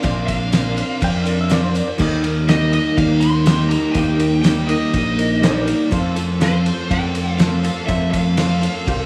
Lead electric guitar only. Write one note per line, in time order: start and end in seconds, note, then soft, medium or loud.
0.04 0.26 F5 loud
0.27 1.71 F5 medium
2.49 2.73 D#5 loud
2.74 2.96 D#5 medium
2.97 3.23 F5 medium
3.20 3.69 C6 loud
3.69 3.96 A#5 loud
3.91 4.39 G5 loud
4.42 4.69 G5 loud
4.67 5.62 D#5 medium
6.43 6.93 C5 loud
6.91 7.38 G5 loud
7.39 7.85 F5 loud
7.86 8.11 E5 medium
8.11 9.06 F5 loud